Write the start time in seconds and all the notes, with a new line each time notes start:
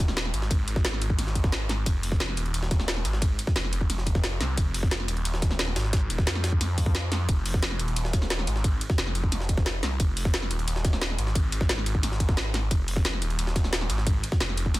Already playing: D#1
0.08 snare
0.17 D#1, snare, closed hi-hat, ride
0.25 snare
0.34 G#1, closed hi-hat, ride
0.42 snare
0.51 kick, closed hi-hat, ride
0.68 G#1, closed hi-hat, ride
0.76 kick, snare
0.85 snare, closed hi-hat, ride
0.93 snare
1.02 closed hi-hat, ride
1.10 kick
1.19 G#1, snare, closed hi-hat, ride
1.27 snare
1.35 kick, closed hi-hat, ride
1.44 kick, snare
1.52 snare, closed hi-hat, ride
1.69 snare, closed hi-hat, ride
1.86 kick, closed hi-hat, ride
2.03 closed hi-hat, open hi-hat
2.12 kick, snare
2.20 snare, closed hi-hat, ride
2.29 snare
2.37 D#1, closed hi-hat, ride
2.46 ride
2.54 closed hi-hat, ride
2.63 snare
2.71 kick, snare, closed hi-hat, ride
2.80 snare
2.88 D#1, snare, closed hi-hat, ride
2.96 snare
3.05 G#1, closed hi-hat, ride
3.13 snare
3.22 kick, closed hi-hat, ride
3.39 closed hi-hat, ride
3.47 kick, snare
3.56 F1, snare, closed hi-hat, ride
3.64 snare
3.73 closed hi-hat, ride
3.81 kick
3.90 snare, closed hi-hat, ride
3.98 snare
4.07 kick, closed hi-hat, ride
4.15 kick, snare
4.24 snare, closed hi-hat, ride
4.41 C2, snare, closed hi-hat, ride
4.57 F1, kick, closed hi-hat, ride
4.74 closed hi-hat, open hi-hat
4.83 kick, snare
4.91 snare, closed hi-hat, ride
5.00 snare
5.08 D#1, closed hi-hat, ride
5.17 ride
5.25 closed hi-hat, ride
5.34 snare
5.42 kick, snare, closed hi-hat, ride
5.51 snare
5.59 D#1, snare, closed hi-hat, ride
5.68 snare
5.76 G#1, snare, closed hi-hat, ride
5.85 snare
5.93 kick, snare, closed hi-hat, ride
6.10 D#1, closed hi-hat, ride
6.18 kick, snare
6.27 F2, snare, closed hi-hat, ride
6.35 snare
6.44 snare, closed hi-hat, ride
6.52 kick
6.61 snare, closed hi-hat, ride
6.78 kick, closed hi-hat, open hi-hat
6.86 kick
6.95 snare, closed hi-hat, ride
7.12 snare, closed hi-hat, ride
7.29 F1, kick, closed hi-hat, ride
7.46 closed hi-hat, open hi-hat
7.54 kick, snare
7.63 snare, closed hi-hat, ride
7.71 snare
7.79 D#1, closed hi-hat, ride
7.88 ride
7.96 closed hi-hat, ride
8.05 snare
8.13 kick, snare, closed hi-hat, ride
8.22 snare
8.30 D#1, snare, closed hi-hat, ride
8.39 snare
8.47 G#1, closed hi-hat, ride
8.56 snare
8.64 kick, closed hi-hat, ride
8.81 closed hi-hat, ride
8.90 kick, snare
8.98 F1, snare, closed hi-hat, ride
9.07 snare
9.15 closed hi-hat, ride
9.24 kick
9.32 snare, closed hi-hat, ride
9.41 snare
9.49 kick, closed hi-hat, ride
9.57 kick, snare
9.66 snare, closed hi-hat, ride
9.83 C2, snare, closed hi-hat, ride
10.00 F1, kick, closed hi-hat, ride
10.17 closed hi-hat, open hi-hat
10.25 kick, snare
10.34 snare, closed hi-hat, ride
10.42 snare
10.51 D#1, closed hi-hat, ride
10.59 ride
10.68 closed hi-hat, ride
10.76 snare
10.85 kick, snare, closed hi-hat, ride
10.93 snare
11.02 D#1, snare, closed hi-hat, ride
11.10 snare
11.18 G#1, closed hi-hat, ride
11.27 snare
11.35 kick, closed hi-hat, ride
11.52 G#1, closed hi-hat, ride
11.61 kick, snare
11.69 snare, closed hi-hat, ride
11.78 snare
11.86 closed hi-hat, ride
11.95 kick
12.03 G#1, snare, closed hi-hat, ride
12.12 snare
12.20 kick, closed hi-hat, ride
12.29 kick, snare
12.37 snare, closed hi-hat, ride
12.54 snare, closed hi-hat, ride
12.71 F1, kick, closed hi-hat, ride
12.88 closed hi-hat, open hi-hat
12.96 kick, snare
13.05 snare, closed hi-hat, ride
13.13 snare
13.22 D#1, closed hi-hat, ride
13.30 ride
13.39 closed hi-hat, ride
13.47 snare
13.56 kick, snare, closed hi-hat, ride
13.64 snare
13.73 D#1, snare, closed hi-hat, ride
13.81 snare
13.90 G#1, closed hi-hat, ride
13.98 snare
14.07 kick, closed hi-hat, ride
14.24 closed hi-hat, ride
14.32 kick, snare
14.40 F1, snare, closed hi-hat, ride
14.49 snare
14.57 closed hi-hat, ride
14.66 kick
14.74 snare, closed hi-hat, ride